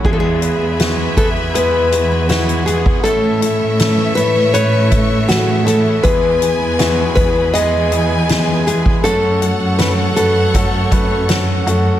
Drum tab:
CC |x---------------|----------------|----------------|----------------|
HH |--x-x-x-x-x-xxx-|x-x-x-x-x-x-x-x-|x-x-x-x-x-x-x-x-|x-x-x-x-x-x-x-x-|
SD |----o-------o---|----o-------o---|----o-------o---|----o-------o---|
BD |o-----o--------o|----------o-----|o-----o--------o|--------o-o-----|